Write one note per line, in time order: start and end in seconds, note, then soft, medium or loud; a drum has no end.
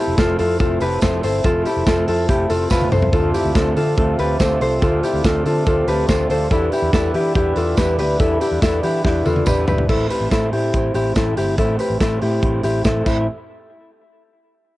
0.00 3.09 C3 medium
0.00 6.47 F3 medium
0.00 3.10 A3 medium
0.00 0.18 C4 medium
0.00 0.18 E4 medium
0.00 0.19 E4 medium
0.00 3.09 E4 medium
0.00 0.18 G4 medium
0.00 0.18 A4 medium
0.07 0.16 F1 loud
0.18 0.35 F1 loud
0.18 0.39 F3 medium
0.18 0.39 A3 loud
0.18 0.40 C4 loud
0.18 0.39 E4 loud
0.18 0.39 F4 medium
0.18 0.38 A4 medium
0.18 0.38 A4 loud
0.18 kick loud
0.18 snare loud
0.18 closed hi-hat medium
0.18 tambourine medium
0.39 0.56 F2 loud
0.39 0.60 C4 soft
0.39 0.61 E4 medium
0.39 0.60 F4 medium
0.39 0.60 A4 medium
0.39 0.59 A4 medium
0.39 open hi-hat medium
0.39 tambourine soft
0.59 0.77 F1 loud
0.59 0.81 A3 medium
0.59 0.82 C4 medium
0.59 0.81 E4 medium
0.59 0.82 F4 medium
0.59 0.81 A4 medium
0.59 kick loud
0.59 tambourine soft
0.63 0.80 A4 medium
0.80 0.99 F1 loud
0.80 1.02 C4 soft
0.80 1.03 E4 medium
0.80 1.03 G4 medium
0.80 1.02 A4 medium
0.80 1.02 B4 medium
0.80 open hi-hat medium
0.80 tambourine medium
1.01 1.19 F1 loud
1.01 1.23 F3 medium
1.01 1.24 A3 loud
1.01 1.24 C4 medium
1.01 1.24 E4 loud
1.01 1.24 A4 medium
1.01 1.22 A4 loud
1.01 1.23 C5 medium
1.01 kick loud
1.01 snare loud
1.01 closed hi-hat medium
1.01 tambourine loud
1.23 1.41 G1 medium
1.23 1.44 C4 soft
1.23 1.45 E4 medium
1.23 1.44 A4 medium
1.23 1.45 C5 medium
1.23 open hi-hat medium
1.23 tambourine medium
1.44 1.62 F1 loud
1.44 1.65 F3 medium
1.44 1.66 A3 medium
1.44 1.66 C4 medium
1.44 1.66 E4 loud
1.44 1.66 F4 medium
1.44 1.66 A4 loud
1.44 1.64 A4 medium
1.44 kick loud
1.44 closed hi-hat medium
1.44 tambourine soft
1.65 1.86 C4 medium
1.65 1.87 E4 medium
1.65 1.87 G4 medium
1.65 1.87 A4 medium
1.65 open hi-hat medium
1.65 tambourine medium
1.76 1.85 F1 loud
1.86 2.04 F1 loud
1.86 2.08 F3 loud
1.86 2.08 A3 medium
1.86 2.08 C4 medium
1.86 2.09 E4 loud
1.86 2.08 F4 medium
1.86 2.07 A4 medium
1.86 2.07 A4 loud
1.86 kick loud
1.86 snare loud
1.86 closed hi-hat medium
1.86 tambourine medium
2.08 2.25 F2 medium
2.08 2.28 C4 soft
2.08 2.29 E4 medium
2.08 2.30 F4 medium
2.08 2.29 A4 medium
2.08 open hi-hat medium
2.28 2.46 F1 loud
2.28 2.50 A3 medium
2.28 2.50 C4 medium
2.28 2.51 E4 medium
2.28 2.50 E4 medium
2.28 2.50 G4 medium
2.28 2.48 A4 medium
2.28 kick loud
2.28 closed hi-hat medium
2.28 tambourine soft
2.49 2.67 F1 medium
2.49 2.71 C4 medium
2.49 2.71 E4 medium
2.49 2.71 F4 medium
2.49 2.71 A4 medium
2.49 open hi-hat medium
2.49 tambourine medium
2.70 2.88 F1 loud
2.70 2.92 F3 loud
2.70 2.92 A3 medium
2.70 2.93 C4 medium
2.70 2.91 E4 loud
2.70 2.93 F4 medium
2.70 2.90 A4 loud
2.70 2.92 B4 medium
2.70 kick loud
2.70 snare medium
2.70 tambourine loud
2.82 high tom medium
2.91 3.09 C2 medium
2.91 3.12 C4 soft
2.91 3.13 E4 soft
2.91 3.13 A4 medium
2.91 3.12 A4 medium
2.91 3.14 C5 medium
2.91 mid tom loud
2.91 tambourine medium
3.03 floor tom medium
3.12 3.30 D2 loud
3.12 6.47 C3 medium
3.12 3.34 D3 medium
3.12 3.34 A3 loud
3.12 6.48 A3 medium
3.12 3.34 C4 loud
3.12 6.47 D4 medium
3.12 3.35 F4 medium
3.12 3.34 A4 loud
3.12 3.33 A4 loud
3.12 kick loud
3.12 closed hi-hat medium
3.12 tambourine soft
3.34 3.55 C4 medium
3.34 3.56 E4 medium
3.34 3.56 F4 medium
3.34 3.55 G4 medium
3.34 3.55 A4 medium
3.34 open hi-hat medium
3.34 tambourine medium
3.44 3.53 D2 loud
3.55 3.73 D2 medium
3.55 3.76 D3 medium
3.55 3.77 A3 medium
3.55 3.77 C4 loud
3.55 3.77 F4 medium
3.55 3.76 F4 medium
3.55 3.76 A4 medium
3.55 3.74 A4 loud
3.55 kick loud
3.55 snare loud
3.55 closed hi-hat medium
3.55 tambourine medium
3.75 3.94 D3 loud
3.75 3.97 C4 medium
3.75 3.98 F4 medium
3.75 3.97 A4 medium
3.75 open hi-hat medium
3.75 tambourine soft
3.97 4.15 D2 loud
3.97 4.18 A3 medium
3.97 4.19 C4 medium
3.97 4.18 F4 medium
3.97 4.20 F4 medium
3.97 4.19 A4 medium
3.97 4.17 A4 medium
3.97 kick loud
3.97 closed hi-hat medium
4.18 4.36 D2 loud
4.18 4.39 C4 medium
4.18 4.40 F4 medium
4.18 4.41 G4 medium
4.18 4.39 A4 medium
4.18 4.40 B4 medium
4.18 open hi-hat medium
4.18 tambourine medium
4.39 4.57 D2 loud
4.39 4.61 D3 medium
4.39 4.61 A3 medium
4.39 4.61 C4 medium
4.39 4.61 F4 loud
4.39 4.61 A4 medium
4.39 4.59 A4 loud
4.39 4.61 C5 medium
4.39 kick loud
4.39 snare loud
4.39 closed hi-hat medium
4.39 tambourine loud
4.60 4.78 C2 medium
4.60 4.81 C4 medium
4.60 4.81 F4 medium
4.60 4.82 A4 medium
4.60 4.81 A4 medium
4.60 4.83 C5 medium
4.60 open hi-hat medium
4.60 tambourine medium
4.81 4.99 D2 loud
4.81 5.03 D3 medium
4.81 5.03 A3 medium
4.81 5.03 C4 medium
4.81 5.03 F4 loud
4.81 5.04 F4 medium
4.81 5.03 A4 loud
4.81 5.01 A4 medium
4.81 kick loud
4.81 closed hi-hat medium
4.81 tambourine soft
5.02 5.24 C4 medium
5.02 5.25 E4 medium
5.02 5.24 F4 medium
5.02 5.25 G4 medium
5.02 5.24 A4 medium
5.02 open hi-hat medium
5.02 tambourine medium
5.13 5.22 D2 medium
5.24 5.42 D2 loud
5.24 5.45 D3 medium
5.24 5.45 A3 medium
5.24 5.46 C4 medium
5.24 5.46 F4 medium
5.24 5.45 A4 loud
5.24 5.44 A4 loud
5.24 kick loud
5.24 snare loud
5.24 closed hi-hat medium
5.24 tambourine medium
5.45 5.63 D3 loud
5.45 5.66 C4 soft
5.45 5.67 F4 medium
5.45 5.66 A4 medium
5.45 open hi-hat medium
5.45 tambourine soft
5.66 5.84 D2 loud
5.66 5.87 A3 medium
5.66 5.88 C4 medium
5.66 5.88 F4 medium
5.66 5.87 F4 medium
5.66 5.88 A4 medium
5.66 5.86 A4 medium
5.66 kick loud
5.66 closed hi-hat medium
5.66 tambourine soft
5.87 6.05 D2 loud
5.87 6.09 C4 medium
5.87 6.09 F4 medium
5.87 6.09 G4 medium
5.87 6.09 A4 medium
5.87 6.09 B4 medium
5.87 open hi-hat medium
5.87 tambourine medium
6.08 6.26 D2 loud
6.08 6.30 D3 loud
6.08 6.30 A3 medium
6.08 6.30 C4 loud
6.08 6.30 F4 loud
6.08 6.31 A4 medium
6.08 6.29 A4 medium
6.08 6.30 C5 medium
6.08 kick loud
6.08 snare loud
6.08 tambourine loud
6.30 6.47 D2 medium
6.30 6.51 C4 soft
6.30 6.52 F4 medium
6.30 6.51 A4 medium
6.30 6.50 A4 medium
6.30 6.51 C5 medium
6.30 open hi-hat medium
6.30 tambourine medium
6.51 6.68 E2 loud
6.51 9.85 D3 medium
6.51 6.72 E3 loud
6.51 9.85 G3 medium
6.51 6.72 G3 medium
6.51 9.85 B3 medium
6.51 6.72 D4 loud
6.51 9.85 E4 medium
6.51 6.72 E4 medium
6.51 6.72 A4 loud
6.51 6.70 B4 loud
6.51 kick loud
6.51 closed hi-hat medium
6.51 tambourine soft
6.71 6.93 D4 medium
6.71 6.94 E4 medium
6.71 6.93 E4 medium
6.71 6.93 G4 medium
6.71 6.93 B4 medium
6.71 open hi-hat medium
6.71 tambourine medium
6.82 6.91 E2 loud
6.93 7.14 E3 medium
6.93 7.15 G3 medium
6.93 7.15 D4 medium
6.93 7.15 E4 medium
6.93 7.14 E4 loud
6.93 7.15 A4 loud
6.93 7.13 B4 loud
6.93 kick loud
6.93 snare loud
6.93 closed hi-hat medium
6.93 tambourine medium
7.14 7.31 E3 loud
7.14 7.35 D4 medium
7.14 7.36 E4 medium
7.14 7.35 G4 medium
7.14 7.35 B4 medium
7.14 open hi-hat medium
7.35 7.53 E2 loud
7.35 7.56 G3 medium
7.35 7.57 D4 medium
7.35 7.57 E4 medium
7.35 7.56 E4 medium
7.35 7.57 G4 medium
7.35 7.55 B4 medium
7.35 kick loud
7.35 closed hi-hat medium
7.35 tambourine soft
7.56 7.74 E2 loud
7.56 7.77 D4 medium
7.56 7.77 E4 medium
7.56 7.78 F4 medium
7.56 7.78 A4 medium
7.56 7.77 B4 medium
7.56 open hi-hat medium
7.56 tambourine medium
7.77 7.95 E2 loud
7.77 7.99 E3 medium
7.77 7.99 G3 medium
7.77 7.99 D4 loud
7.77 7.99 E4 loud
7.77 7.99 G4 medium
7.77 7.98 B4 medium
7.77 7.97 B4 loud
7.77 kick loud
7.77 snare loud
7.77 closed hi-hat medium
7.77 tambourine loud
7.98 8.16 D2 medium
7.98 8.20 D4 medium
7.98 8.20 E4 medium
7.98 8.20 G4 medium
7.98 8.19 B4 medium
7.98 8.20 B4 medium
7.98 open hi-hat medium
7.98 tambourine medium
8.19 8.37 E2 loud
8.19 8.41 E3 medium
8.19 8.41 G3 medium
8.19 8.41 D4 medium
8.19 8.41 E4 loud
8.19 8.41 E4 medium
8.19 8.41 A4 loud
8.19 8.39 B4 loud
8.19 kick loud
8.19 closed hi-hat medium
8.19 tambourine soft
8.40 8.62 D4 medium
8.40 8.62 E4 medium
8.40 8.62 G4 medium
8.40 8.62 B4 medium
8.40 open hi-hat medium
8.40 tambourine medium
8.51 8.60 E2 medium
8.62 8.79 E2 loud
8.62 8.83 E3 loud
8.62 8.83 G3 loud
8.62 8.83 D4 medium
8.62 8.83 E4 medium
8.62 8.83 A4 medium
8.62 8.82 B4 loud
8.62 kick loud
8.62 snare loud
8.62 closed hi-hat medium
8.62 tambourine medium
8.83 9.01 E3 loud
8.83 9.04 D4 medium
8.83 9.05 E4 medium
8.83 9.04 G4 medium
8.83 9.04 B4 medium
8.83 open hi-hat medium
8.83 tambourine soft
9.04 9.22 E2 loud
9.04 9.25 G3 medium
9.04 9.26 D4 medium
9.04 9.26 E4 medium
9.04 9.25 E4 medium
9.04 9.26 G4 medium
9.04 9.23 B4 medium
9.04 kick loud
9.04 snare medium
9.25 9.43 E2 loud
9.25 9.46 D4 medium
9.25 9.47 E4 medium
9.25 9.47 F4 medium
9.25 9.47 A4 medium
9.25 9.46 B4 medium
9.25 high tom medium
9.25 tambourine medium
9.36 high tom medium
9.46 9.64 E2 loud
9.46 9.68 E3 medium
9.46 9.68 G3 medium
9.46 9.68 D4 loud
9.46 9.67 E4 medium
9.46 9.68 G4 medium
9.46 9.67 B4 medium
9.46 9.66 B4 loud
9.46 kick loud
9.46 mid tom medium
9.46 tambourine loud
9.67 9.85 G1 medium
9.67 9.90 D4 medium
9.67 9.89 E4 medium
9.67 9.89 G4 medium
9.67 9.88 B4 medium
9.67 9.89 B4 medium
9.67 floor tom loud
9.67 tambourine medium
9.78 floor tom loud
9.89 10.06 A1 loud
9.89 10.10 A2 medium
9.89 10.10 E3 medium
9.89 10.10 A3 medium
9.89 10.11 C4 medium
9.89 10.10 E4 medium
9.89 10.10 A4 medium
9.89 10.09 C5 medium
9.89 kick loud
9.89 crash medium
9.89 tambourine soft
10.10 10.31 A3 soft
10.10 10.31 C4 medium
10.10 10.32 E4 medium
10.10 10.31 G4 soft
10.10 10.31 B4 medium
10.10 10.31 C5 medium
10.10 open hi-hat medium
10.10 tambourine medium
10.20 10.29 A1 medium
10.31 10.48 A1 medium
10.31 10.52 A2 medium
10.31 10.53 E3 medium
10.31 10.53 A3 medium
10.31 10.53 C4 medium
10.31 10.52 E4 medium
10.31 10.52 A4 medium
10.31 10.51 C5 medium
10.31 kick loud
10.31 snare loud
10.31 closed hi-hat medium
10.31 tambourine medium
10.52 10.70 A2 medium
10.52 10.72 A3 medium
10.52 10.73 C4 medium
10.52 10.74 E4 medium
10.52 10.93 E4 medium
10.52 10.92 G4 medium
10.52 10.73 C5 medium
10.52 open hi-hat medium
10.73 10.91 A1 loud
10.73 10.95 A3 medium
10.73 10.95 C4 medium
10.73 10.95 E4 medium
10.73 10.93 C5 medium
10.73 kick loud
10.73 closed hi-hat medium
10.73 tambourine soft
10.94 11.12 A1 loud
10.94 11.16 A3 soft
10.94 11.16 C4 medium
10.94 11.16 E4 medium
10.94 11.16 G4 medium
10.94 11.16 C5 medium
10.94 open hi-hat medium
10.94 tambourine medium
11.15 11.33 A1 medium
11.15 11.37 A2 medium
11.15 11.37 E3 medium
11.15 11.37 A3 medium
11.15 11.37 C4 medium
11.15 11.37 E4 medium
11.15 11.36 E4 medium
11.15 11.37 A4 medium
11.15 11.35 C5 medium
11.15 kick loud
11.15 snare loud
11.15 closed hi-hat medium
11.15 tambourine medium
11.36 11.54 G1 medium
11.36 11.58 A3 soft
11.36 11.58 C4 medium
11.36 11.58 E4 medium
11.36 11.58 G4 medium
11.36 11.58 C5 medium
11.36 open hi-hat medium
11.36 tambourine soft
11.58 11.75 A1 loud
11.58 11.79 A2 medium
11.58 11.80 E3 medium
11.58 11.80 A3 medium
11.58 11.80 C4 medium
11.58 11.79 E4 medium
11.58 11.80 A4 loud
11.58 11.78 C5 medium
11.58 kick loud
11.58 closed hi-hat medium
11.58 tambourine soft
11.79 12.00 A3 soft
11.79 12.00 C4 medium
11.79 12.01 E4 medium
11.79 12.00 G4 medium
11.79 12.01 B4 medium
11.79 12.00 C5 medium
11.79 open hi-hat medium
11.79 tambourine medium
11.90 11.98 A1 medium
12.00 12.18 A1 medium
12.00 12.22 A2 medium
12.00 12.22 E3 medium
12.00 12.22 A3 medium
12.00 12.22 C4 medium
12.00 12.22 E4 medium
12.00 12.21 E4 medium
12.00 12.22 A4 medium
12.00 12.20 C5 loud
12.00 kick loud
12.00 snare loud
12.00 closed hi-hat medium
12.00 tambourine medium
12.21 12.39 A2 medium
12.21 12.41 A3 medium
12.21 12.42 C4 soft
12.21 12.43 E4 medium
12.21 12.62 E4 medium
12.21 12.62 G4 medium
12.21 12.42 C5 medium
12.21 open hi-hat medium
12.42 12.60 A1 loud
12.42 12.64 A3 medium
12.42 12.64 C4 medium
12.42 12.63 E4 medium
12.42 12.62 C5 medium
12.42 kick loud
12.42 closed hi-hat medium
12.63 12.81 A1 loud
12.63 12.85 A3 soft
12.63 12.85 C4 medium
12.63 12.85 E4 medium
12.63 12.85 G4 medium
12.63 12.85 C5 medium
12.63 open hi-hat medium
12.63 tambourine medium
12.85 13.02 A1 medium
12.85 13.05 A2 medium
12.85 13.05 E3 medium
12.85 13.06 A3 medium
12.85 13.06 C4 medium
12.85 13.05 E4 medium
12.85 13.07 E4 medium
12.85 13.06 A4 medium
12.85 13.07 C5 medium
12.85 kick medium
12.85 snare loud
12.85 closed hi-hat medium
12.85 tambourine loud
13.06 13.26 A1 medium
13.06 13.23 A2 medium
13.06 13.23 E3 medium
13.06 13.24 A3 medium
13.06 13.24 C4 medium
13.06 13.26 E4 medium
13.06 13.24 E4 medium
13.06 13.24 C5 medium
13.06 kick loud
13.06 crash medium
13.06 tambourine medium